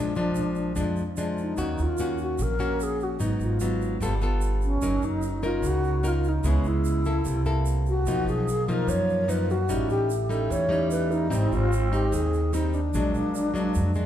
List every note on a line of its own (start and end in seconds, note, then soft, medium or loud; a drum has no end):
0.00 0.33 A#1 loud
0.00 0.74 A#2 soft
0.00 0.12 F3 soft
0.00 0.13 G#3 soft
0.00 0.13 D4 medium
0.00 1.18 D4 medium
0.15 0.74 F3 medium
0.15 0.74 G#3 medium
0.15 0.74 D4 medium
0.15 shaker soft
0.35 0.74 A#1 medium
0.35 shaker medium
0.55 shaker soft
0.76 1.55 F2 soft
0.76 0.96 F2 medium
0.76 1.02 F3 soft
0.76 1.02 G#3 soft
0.76 1.02 D4 medium
0.76 shaker medium
0.96 shaker soft
1.17 1.55 F3 medium
1.17 1.55 G#3 medium
1.17 1.55 D4 medium
1.17 shaker medium
1.38 shaker soft
1.42 1.84 D#4 medium
1.57 1.77 D#2 medium
1.57 2.37 D#3 medium
1.57 1.95 A#3 soft
1.57 1.95 C#4 soft
1.57 1.95 F#4 medium
1.57 shaker medium
1.78 2.35 D#2 medium
1.78 shaker soft
1.83 2.21 F4 medium
1.98 2.57 A#3 medium
1.98 2.57 C#4 medium
1.98 2.57 F#4 medium
1.98 shaker medium
2.18 shaker soft
2.22 2.44 F#4 medium
2.38 3.16 A#1 loud
2.38 3.18 A#2 medium
2.38 shaker medium
2.43 2.85 A#4 loud
2.59 3.17 A#3 medium
2.59 3.17 C#4 medium
2.59 3.17 F#4 medium
2.59 shaker soft
2.80 3.05 G#4 medium
2.80 shaker medium
3.00 3.22 F#4 medium
3.00 shaker soft
3.19 3.38 G#1 medium
3.19 3.99 G#2 medium
3.19 3.57 F#3 soft
3.19 3.57 B3 soft
3.19 3.58 D#4 medium
3.19 3.29 D#4 medium
3.19 shaker medium
3.39 3.97 G#1 medium
3.39 4.19 F4 medium
3.39 shaker soft
3.60 4.00 F#3 medium
3.60 4.00 B3 soft
3.60 4.00 D#4 medium
3.60 shaker medium
3.82 shaker soft
4.00 4.78 G1 loud
4.00 4.81 G3 medium
4.00 4.14 B3 medium
4.00 4.14 F4 medium
4.00 4.14 A4 medium
4.00 shaker medium
4.21 4.79 B3 medium
4.21 4.80 F4 medium
4.21 4.80 A4 medium
4.21 shaker soft
4.41 shaker medium
4.62 5.07 C#4 medium
4.62 shaker soft
4.81 5.01 F#1 medium
4.81 5.62 F#3 medium
4.81 5.40 C#4 soft
4.81 5.40 D#4 medium
4.81 5.40 A#4 medium
4.81 shaker medium
5.02 5.59 F#1 medium
5.02 5.47 D#4 medium
5.02 shaker soft
5.22 shaker medium
5.43 6.01 C#4 medium
5.43 6.01 D#4 medium
5.43 5.69 F4 medium
5.43 6.01 A#4 medium
5.43 shaker soft
5.62 6.40 C#2 medium
5.62 6.42 C#3 medium
5.62 shaker medium
5.67 6.09 F#4 medium
5.84 shaker soft
6.03 6.30 C#4 soft
6.03 6.30 D#4 medium
6.03 6.30 F4 medium
6.03 6.30 A#4 medium
6.03 shaker medium
6.24 shaker soft
6.29 6.49 D#4 medium
6.43 6.63 C#2 medium
6.43 7.24 C#3 medium
6.43 7.02 G#3 medium
6.43 7.02 B3 medium
6.43 7.03 E4 medium
6.43 shaker medium
6.48 6.69 C#4 medium
6.63 7.21 C#2 medium
6.63 shaker soft
6.68 7.47 E4 medium
6.85 shaker medium
7.05 7.43 A#3 medium
7.05 7.43 E4 medium
7.05 7.43 A4 medium
7.05 shaker soft
7.25 8.02 C2 medium
7.25 8.05 C3 soft
7.25 shaker medium
7.45 8.04 A#3 medium
7.45 8.04 E4 medium
7.45 8.04 A4 medium
7.45 shaker soft
7.66 shaker medium
7.86 8.31 F#4 medium
7.86 shaker soft
8.06 8.26 B1 medium
8.06 8.86 B2 soft
8.06 8.47 F3 soft
8.06 9.70 A#3 medium
8.06 8.48 A#3 soft
8.06 8.48 D#4 medium
8.06 shaker medium
8.26 8.84 B1 medium
8.26 8.71 G#4 medium
8.26 shaker soft
8.48 shaker medium
8.68 9.26 F3 medium
8.68 9.26 A#3 medium
8.68 9.26 D#4 medium
8.68 8.91 A#4 medium
8.68 shaker soft
8.87 9.65 F#2 medium
8.87 9.68 F#2 medium
8.87 9.31 C#5 loud
8.87 shaker medium
9.09 shaker soft
9.28 9.54 F3 medium
9.28 9.55 A#3 medium
9.28 9.55 D#4 medium
9.28 9.53 B4 loud
9.28 shaker medium
9.50 9.91 F#4 medium
9.50 shaker soft
9.69 9.88 A1 medium
9.69 10.48 A2 medium
9.69 10.09 G3 soft
9.69 11.32 A3 loud
9.69 10.10 C#4 medium
9.69 10.10 D#4 medium
9.69 shaker medium
9.88 10.46 A1 medium
9.88 10.32 G4 medium
9.88 shaker soft
10.10 shaker medium
10.29 10.67 G3 medium
10.29 10.67 C#4 medium
10.29 10.67 D#4 medium
10.29 10.53 A4 medium
10.29 shaker soft
10.50 11.27 E2 loud
10.50 11.29 E3 medium
10.50 10.90 C#5 loud
10.50 shaker medium
10.69 11.27 G3 medium
10.69 11.28 C#4 medium
10.69 11.28 D#4 medium
10.69 shaker soft
10.91 11.13 B4 loud
10.91 shaker medium
11.11 11.54 D#4 medium
11.11 shaker soft
11.30 11.50 G#1 loud
11.30 12.10 G#2 medium
11.30 11.71 G3 medium
11.30 11.71 C4 medium
11.30 12.66 C4 loud
11.30 11.71 D#4 medium
11.30 shaker medium
11.51 12.08 G#1 medium
11.51 11.92 F4 medium
11.51 shaker soft
11.73 shaker medium
11.92 12.50 C4 medium
11.92 12.50 D#4 medium
11.92 12.15 G4 medium
11.92 shaker soft
12.12 12.89 D#2 loud
12.12 12.92 D#3 medium
12.12 12.55 G#4 medium
12.12 shaker medium
12.34 shaker soft
12.53 12.79 G3 medium
12.53 12.80 C4 medium
12.53 12.76 D#4 medium
12.53 12.80 D#4 medium
12.53 shaker medium
12.74 14.06 D4 medium
12.74 shaker soft
12.94 13.13 A#1 medium
12.94 13.73 A#2 medium
12.94 13.52 F#3 soft
12.94 13.52 G#3 medium
12.94 14.06 A#3 medium
12.94 13.52 D4 medium
12.94 shaker medium
13.15 13.72 A#1 medium
13.15 shaker soft
13.35 shaker medium
13.54 13.91 F#3 medium
13.54 13.92 G#3 medium
13.54 13.92 D4 medium
13.54 shaker soft
13.75 14.06 F2 loud
13.75 shaker medium
13.95 14.06 G#3 medium
13.95 14.06 D4 medium
13.95 shaker soft